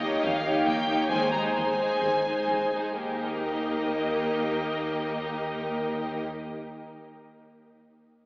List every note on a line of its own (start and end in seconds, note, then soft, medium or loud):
0.00 0.17 D#2 medium
0.00 0.44 A#3 soft
0.00 0.44 D#4 soft
0.00 0.43 G4 soft
0.00 0.43 C#5 soft
0.00 0.23 D#5 medium
0.24 0.60 D#2 medium
0.24 0.67 F5 medium
0.44 0.88 A#3 soft
0.44 0.88 D#4 soft
0.44 0.87 G4 soft
0.44 0.87 C#5 soft
0.67 1.04 D#2 medium
0.67 1.10 G5 medium
0.88 1.10 A#3 soft
0.88 1.10 D#4 soft
0.88 1.10 G4 soft
0.88 1.10 C#5 soft
1.10 1.48 D#2 medium
1.10 1.32 G#3 soft
1.10 1.32 D#4 soft
1.10 1.32 G#4 soft
1.10 1.32 C5 soft
1.10 1.32 G#5 medium
1.31 1.78 G#3 soft
1.31 1.78 D#4 soft
1.31 1.78 G#4 soft
1.31 1.78 C5 soft
1.31 1.39 A#5 medium
1.54 1.94 D#2 medium
1.54 2.71 G#5 medium
1.79 2.25 G#3 soft
1.79 2.25 D#4 soft
1.79 2.24 G#4 soft
1.79 2.24 C5 soft
2.01 2.41 D#2 medium
2.25 2.73 G#3 soft
2.25 2.73 D#4 soft
2.25 2.73 G#4 soft
2.25 2.73 C5 soft
2.49 2.91 D#2 soft
2.74 2.98 G#3 soft
2.74 2.98 D#4 soft
2.74 2.99 G#4 soft
2.74 2.99 C5 soft
2.98 6.22 D#2 soft
2.98 6.22 A#3 soft
2.98 6.22 D#4 soft
2.98 6.22 G4 soft
2.98 6.22 A#4 soft
2.98 6.21 D#5 soft